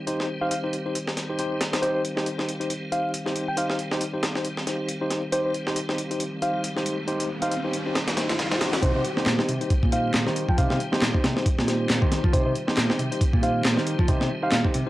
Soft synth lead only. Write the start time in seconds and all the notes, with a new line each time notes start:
0.41 F5
0.51 F5
1.82 C5
1.95 C5
2.92 F5
3.48 G5
3.58 F5
3.70 F5
5.32 C5
5.45 C5
6.42 F5
7.42 F5
7.51 F5
8.83 C5
8.95 C5
9.92 F5
10.49 G5
10.58 F5
10.71 F5
12.33 C5
12.46 C5
13.43 F5
14.43 F5
14.53 F5